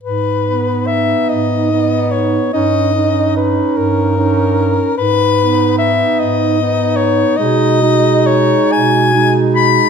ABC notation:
X:1
M:6/8
L:1/8
Q:3/8=49
K:G#m
V:1 name="Soprano saxophone"
B2 e d2 c | d2 B A3 | B2 e d2 c | d2 c g2 b |]
V:2 name="Clarinet"
z D3 D2 | D D3 D2 | z D3 D2 | D D3 D2 |]
V:3 name="Tenor saxophone"
z B,3 B,2 | C C3 C2 | z B,3 B,2 | G, G,3 G,2 |]
V:4 name="Bass clarinet" clef=bass
G,,3 G,,3 | =G,,3 G,,3 | G,,3 G,,3 | B,,3 B,,3 |]